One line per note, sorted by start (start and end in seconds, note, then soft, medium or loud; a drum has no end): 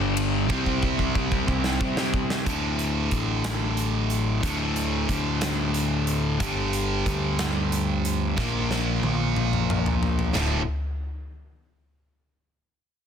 0.00 0.50 G1 loud
0.00 0.47 G2 loud
0.00 0.47 G2 medium
0.00 0.49 G2 medium
0.00 0.48 D3 loud
0.00 0.48 D3 medium
0.00 0.48 G3 medium
0.00 0.49 G3 loud
0.00 0.51 D4 medium
0.00 0.47 G4 loud
0.17 ride medium
0.48 1.44 C2 loud
0.48 1.78 C3 loud
0.48 1.46 C3 loud
0.48 1.79 G3 loud
0.48 1.46 G3 loud
0.48 1.46 C4 medium
0.48 1.79 C4 loud
0.48 1.47 E4 loud
0.48 1.47 G4 loud
0.48 kick loud
0.53 1.46 C5 loud
0.66 kick medium
0.83 kick medium
0.99 kick medium
1.15 kick medium
1.32 kick medium
1.47 1.78 C2 loud
1.47 2.46 C3 medium
1.47 2.45 G3 medium
1.47 2.45 C4 medium
1.47 2.45 E4 medium
1.47 2.44 G4 medium
1.47 2.44 C5 medium
1.47 kick medium
1.64 snare medium
1.80 2.44 C3 medium
1.80 2.45 G3 medium
1.80 2.45 C4 medium
1.80 kick loud
1.97 snare loud
2.14 kick loud
2.30 snare medium
2.45 4.41 D2 medium
2.45 3.08 D2 medium
2.45 4.41 A2 medium
2.45 4.42 D3 loud
2.45 kick loud
2.45 closed hi-hat medium
2.79 closed hi-hat medium
3.11 4.39 A1 medium
3.11 kick medium
3.11 closed hi-hat medium
3.44 snare loud
3.44 closed hi-hat medium
3.77 closed hi-hat medium
4.10 closed hi-hat medium
4.42 6.38 D2 medium
4.42 5.05 D2 medium
4.42 6.39 A2 loud
4.42 6.39 D3 loud
4.42 kick loud
4.42 closed hi-hat loud
4.76 closed hi-hat medium
5.09 6.36 D2 medium
5.09 kick medium
5.09 closed hi-hat medium
5.41 snare loud
5.41 closed hi-hat loud
5.74 closed hi-hat medium
6.07 closed hi-hat medium
6.39 7.02 G1 medium
6.39 8.35 G2 medium
6.39 8.36 D3 loud
6.39 8.36 G3 medium
6.39 kick loud
6.39 closed hi-hat loud
6.73 closed hi-hat medium
7.06 8.34 D2 medium
7.06 kick medium
7.06 closed hi-hat medium
7.39 snare loud
7.39 closed hi-hat medium
7.72 closed hi-hat medium
8.05 closed hi-hat medium
8.36 8.99 A#1 loud
8.36 10.32 A#2 medium
8.36 10.33 F3 medium
8.36 10.33 A#3 loud
8.36 kick loud
8.36 snare medium
8.71 snare medium
9.02 10.30 A#1 loud
9.02 high tom medium
9.36 mid tom medium
9.53 mid tom medium
9.70 mid tom loud
9.86 floor tom medium
10.03 floor tom loud
10.19 floor tom medium
10.34 10.65 D1 medium
10.34 10.60 D2 medium
10.34 10.61 A2 loud
10.34 10.61 D3 loud
10.34 snare loud
10.34 floor tom loud
10.34 splash medium